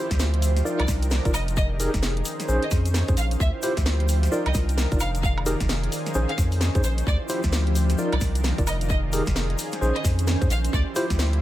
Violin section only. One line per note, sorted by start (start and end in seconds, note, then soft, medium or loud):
0.80 0.88 D5 medium
1.34 1.42 D#5 medium
1.57 1.65 D#5 loud
2.63 2.71 D#5 medium
3.17 3.25 F5 medium
3.40 3.48 E5 loud
4.46 4.54 D#5 loud
5.01 5.09 F5 medium
5.23 5.31 F5 loud
6.29 6.37 F5 medium
6.84 6.92 C5 medium
7.07 7.15 D5 loud
8.13 8.21 D5 medium
8.67 8.75 D#5 medium
8.90 8.98 D#5 loud
9.96 10.04 D#5 medium
10.50 10.58 F5 medium
10.73 10.81 D5 loud